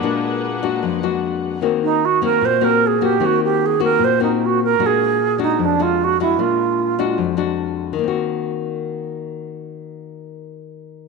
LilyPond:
<<
  \new Staff \with { instrumentName = "String section" } { \time 4/4 \key ees \dorian \tempo 4 = 151 <bes d' aes' ces'' ges''>1 | r1 | r1 | r1 |
r1 | r1 | r1 | }
  \new Staff \with { instrumentName = "Alto flute" } { \time 4/4 \key ees \dorian r1 | r8 ees'8 ges'8 bes'8 c''8 bes'8 aes'8 g'8 | ges'8 g'8 aes'8 bes'8 c''8 ees'8 ges'8 bes'8 | aes'4. ees'8 d'8 f'8 ges'8 fes'8 |
f'2 r2 | r1 | r1 | }
  \new Staff \with { instrumentName = "Nylon-string guitar" } { \time 4/4 \key ees \dorian << { <aes d' ges'>4. <aes d' ges'>4 <aes d' ges'>4. | <bes c' ges'>4 r8 <bes c' ges'>4 <bes c' ges'>4 <bes c' ges'>8 | <bes c' ges'>4. <bes c' ges'>4 <bes c' ges'>4. | <aes d' ges'>4 r8 <aes d' ges'>4 <aes d' ges'>4 <aes d' ges'>8 |
<aes d'>4. <aes d' ges'>4 <aes d' ges'>4. | <ees bes c' ges'>1~ | <ees bes c' ges'>1 | } \\ { bes,2 f,2 | ees2 bes,2 | ees2 bes,2 | bes,2 f,2 |
bes,2 f,2 | r1 | r1 | } >> }
>>